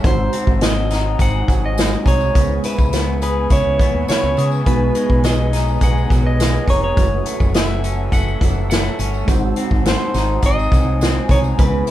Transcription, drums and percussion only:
0.04 kick loud
0.04 closed hi-hat medium
0.04 tambourine medium
0.33 closed hi-hat medium
0.33 tambourine medium
0.47 kick medium
0.61 snare loud
0.61 closed hi-hat medium
0.61 tambourine medium
0.90 snare soft
0.90 closed hi-hat medium
0.90 tambourine medium
1.19 kick medium
1.19 closed hi-hat medium
1.19 tambourine medium
1.48 kick loud
1.48 closed hi-hat medium
1.48 tambourine soft
1.78 snare loud
1.78 closed hi-hat medium
1.78 tambourine medium
2.06 kick loud
2.06 closed hi-hat medium
2.06 tambourine soft
2.21 tambourine soft
2.35 kick loud
2.35 closed hi-hat medium
2.35 tambourine soft
2.64 closed hi-hat medium
2.64 tambourine medium
2.79 kick medium
2.79 tambourine soft
2.93 snare loud
2.93 closed hi-hat medium
2.93 tambourine medium
3.22 closed hi-hat medium
3.22 tambourine medium
3.50 kick loud
3.50 closed hi-hat medium
3.50 tambourine soft
3.79 kick loud
3.79 closed hi-hat medium
3.79 tambourine soft
4.08 snare loud
4.08 closed hi-hat loud
4.08 tambourine medium
4.37 closed hi-hat medium
4.37 tambourine soft
4.51 tambourine soft
4.66 kick loud
4.66 closed hi-hat medium
4.66 tambourine medium
4.95 closed hi-hat medium
4.95 tambourine medium
5.10 kick medium
5.24 snare loud
5.24 closed hi-hat medium
5.24 tambourine medium
5.53 snare soft
5.53 closed hi-hat medium
5.53 tambourine soft
5.68 tambourine soft
5.81 kick medium
5.81 closed hi-hat medium
5.81 tambourine medium
5.97 tambourine soft
6.10 kick loud
6.10 closed hi-hat medium
6.10 tambourine soft
6.40 snare loud
6.40 closed hi-hat loud
6.40 tambourine medium
6.68 kick medium
6.68 closed hi-hat medium
6.68 tambourine soft
6.97 kick loud
6.97 closed hi-hat medium
6.97 tambourine soft
7.26 closed hi-hat medium
7.26 tambourine medium
7.40 kick medium
7.40 tambourine soft
7.54 snare loud
7.54 closed hi-hat medium
7.54 tambourine medium
7.84 closed hi-hat medium
7.84 tambourine medium
8.12 kick loud
8.12 closed hi-hat medium
8.12 tambourine medium
8.28 tambourine soft
8.41 kick loud
8.41 closed hi-hat medium
8.41 tambourine soft
8.71 snare loud
8.71 closed hi-hat medium
8.71 tambourine medium
8.99 closed hi-hat medium
8.99 tambourine soft
9.14 tambourine soft
9.28 kick loud
9.28 closed hi-hat medium
9.28 tambourine soft
9.56 closed hi-hat medium
9.56 tambourine medium
9.71 kick medium
9.85 snare loud
9.85 closed hi-hat medium
9.85 tambourine medium
10.14 snare soft
10.14 closed hi-hat medium
10.14 tambourine medium
10.42 kick loud
10.42 closed hi-hat loud
10.42 tambourine medium
10.59 tambourine soft
10.72 kick loud
10.72 closed hi-hat medium
10.72 tambourine medium
11.01 snare loud
11.01 closed hi-hat loud
11.01 tambourine medium
11.29 kick loud
11.29 closed hi-hat medium
11.29 tambourine soft
11.44 tambourine soft
11.59 kick loud
11.59 closed hi-hat medium
11.59 tambourine soft
11.87 closed hi-hat medium
11.87 tambourine medium

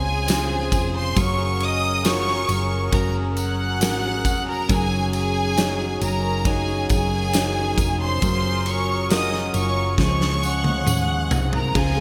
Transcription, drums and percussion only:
0.28 snare loud
0.28 ride medium
0.28 tambourine medium
0.72 kick medium
0.72 ride medium
0.72 tambourine soft
1.16 kick loud
1.16 ride medium
1.16 tambourine medium
1.60 ride medium
1.60 tambourine soft
2.05 snare loud
2.05 ride medium
2.05 tambourine medium
2.28 snare soft
2.49 ride medium
2.49 tambourine soft
2.92 kick medium
2.92 ride medium
2.92 tambourine soft
3.37 ride medium
3.37 tambourine soft
3.81 snare loud
3.81 ride medium
3.81 tambourine medium
4.25 kick medium
4.25 ride medium
4.25 tambourine medium
4.69 kick loud
4.69 ride medium
4.69 tambourine medium
5.13 ride medium
5.13 tambourine soft
5.57 snare loud
5.57 ride medium
5.57 tambourine medium
6.01 ride medium
6.01 tambourine soft
6.45 kick medium
6.45 ride medium
6.89 kick medium
6.89 ride medium
6.89 tambourine medium
7.33 snare loud
7.33 ride medium
7.33 tambourine medium
7.78 kick medium
7.78 ride medium
7.78 tambourine medium
8.22 kick loud
8.22 ride medium
8.22 tambourine medium
8.66 ride medium
8.66 tambourine soft
9.10 snare loud
9.10 ride medium
9.10 tambourine medium
9.34 snare soft
9.54 ride medium
9.54 tambourine soft
9.98 kick medium
9.98 snare medium
9.98 tambourine soft
10.21 snare medium
10.43 tambourine soft
10.64 high tom medium
10.87 mid tom medium
10.87 tambourine medium
11.31 floor tom loud
11.31 tambourine medium
11.53 floor tom medium
11.75 kick loud
11.75 crash medium

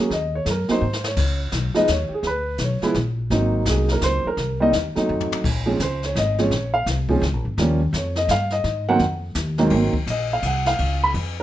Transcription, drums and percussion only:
0.11 brush sweep soft
0.11 kick soft
0.11 snare soft
0.46 kick soft
0.46 snare medium
0.46 hi-hat pedal medium
0.68 snare soft
0.93 snare soft
1.04 snare medium
1.17 brush sweep medium
1.17 kick medium
1.17 snare soft
1.17 crash medium
1.52 kick soft
1.52 snare medium
1.52 hi-hat pedal medium
1.75 snare soft
1.87 kick soft
1.87 snare medium
1.87 hi-hat pedal medium
2.23 brush sweep medium
2.23 kick soft
2.23 snare soft
2.58 kick soft
2.58 snare medium
2.58 hi-hat pedal medium
2.82 snare soft
2.94 kick soft
2.94 snare soft
3.30 brush sweep soft
3.30 kick soft
3.30 snare soft
3.65 kick soft
3.65 snare medium
3.65 hi-hat pedal medium
3.88 snare soft
4.01 kick soft
4.01 snare medium
4.01 hi-hat pedal medium
4.37 brush sweep soft
4.37 kick soft
4.37 snare soft
4.73 kick soft
4.73 snare medium
4.73 hi-hat pedal medium
4.96 snare soft
5.20 floor tom medium
5.32 floor tom medium
5.44 brush sweep soft
5.44 kick medium
5.44 snare soft
5.44 crash medium
5.80 kick soft
5.80 snare medium
5.80 hi-hat pedal medium
6.03 snare soft
6.15 kick soft
6.15 snare medium
6.15 hi-hat pedal medium
6.38 snare soft
6.51 brush sweep medium
6.51 kick soft
6.51 snare soft
6.86 kick soft
6.86 snare medium
6.86 hi-hat pedal medium
7.09 kick medium
7.22 kick soft
7.22 snare soft
7.57 brush sweep soft
7.57 kick soft
7.57 snare soft
7.93 kick soft
7.93 snare medium
7.93 hi-hat pedal medium
8.16 snare soft
8.28 kick soft
8.28 snare medium
8.28 hi-hat pedal medium
8.50 snare soft
8.64 brush sweep soft
8.64 kick soft
8.64 snare soft
8.99 kick soft
8.99 snare soft
9.35 kick soft
9.35 snare medium
9.35 hi-hat pedal medium
9.58 snare soft
9.70 kick soft
9.70 ride medium
9.94 kick medium
10.07 kick soft
10.07 hi-hat pedal medium
10.07 ride medium
10.30 ride soft
10.43 kick soft
10.43 hi-hat pedal soft
10.43 ride medium
10.66 snare medium
10.66 ride soft
10.78 kick soft
10.78 ride medium
11.14 kick soft
11.14 ride medium

